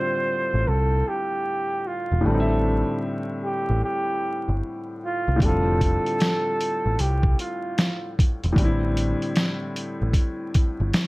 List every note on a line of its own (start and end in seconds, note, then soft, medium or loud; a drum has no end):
0.00 2.18 A2 medium
0.00 2.20 D3 medium
0.00 2.21 G3 medium
0.00 2.23 C4 soft
0.00 2.24 F4 medium
0.00 0.69 C5 loud
0.54 0.66 A1 medium
0.68 1.02 C2 medium
0.68 1.10 A4 loud
1.08 1.89 G4 loud
1.87 2.27 F4 medium
2.12 2.23 E1 medium
2.21 5.35 A2 medium
2.21 5.36 D3 medium
2.26 2.82 A1 loud
2.26 5.38 G3 medium
2.26 3.04 A4 medium
2.30 5.39 C4 medium
2.30 2.37 D#4 medium
2.40 5.44 E5 medium
3.44 3.80 G4 medium
3.70 3.81 A1 medium
3.84 4.58 G4 loud
4.48 4.60 G1 medium
5.05 5.45 F4 medium
5.28 5.39 C2 medium
5.36 8.50 A2 medium
5.36 8.51 D3 medium
5.40 5.97 F1 medium
5.40 8.53 G3 medium
5.40 7.02 A4 loud
5.40 kick medium
5.40 closed hi-hat medium
5.45 8.55 C4 soft
5.45 8.56 F4 medium
5.81 kick medium
5.81 closed hi-hat medium
6.06 closed hi-hat soft
6.20 snare loud
6.20 closed hi-hat medium
6.61 closed hi-hat medium
6.86 6.97 A1 medium
6.99 7.34 C2 medium
6.99 7.39 G4 medium
6.99 closed hi-hat medium
7.23 kick loud
7.39 8.14 F4 medium
7.39 closed hi-hat medium
7.78 snare loud
7.78 closed hi-hat medium
8.19 kick medium
8.19 closed hi-hat medium
8.44 8.56 E1 medium
8.44 closed hi-hat soft
8.52 11.07 A2 medium
8.52 11.07 D3 medium
8.52 kick medium
8.57 9.13 A1 loud
8.57 11.07 G3 medium
8.57 closed hi-hat medium
8.62 11.07 C4 medium
8.62 11.07 E4 medium
8.97 closed hi-hat medium
9.22 closed hi-hat soft
9.36 snare loud
9.36 closed hi-hat medium
9.76 closed hi-hat medium
10.02 10.13 A1 medium
10.13 kick medium
10.13 closed hi-hat medium
10.54 kick medium
10.54 closed hi-hat medium
10.80 10.92 G1 medium
10.93 snare loud
10.93 closed hi-hat medium